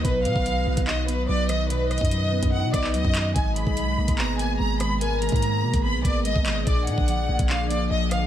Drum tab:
HH |x-----x-----x--------x--------x-----------x-----|x-----x-x-x-x--------x--------x-----x-----x-----|x-----x-----x--------x--------x-----------x-----|x-----x-x-x-x--------x--------x-----x-----x-----|
CP |------------------------x-----------------------|---------------------------------x--------x-----|------------------------x-----------------------|------------------------------------------x-----|
SD |------------------------------------------r-----|------r-----------------------r-----------------|------------------------------------------r-----|------------------------------------------------|
BD |o--------o-----------o--------------------------|---------o-----------o--------o--------o--------|o--------o-----------o--------------------------|---------o-----------o--------o--------o--------|

HH |x-----x-----x--------x--------x-----------x-----|
CP |------------------------x-----------------------|
SD |------------------------------------------r-----|
BD |o--------o-----------o--------------------------|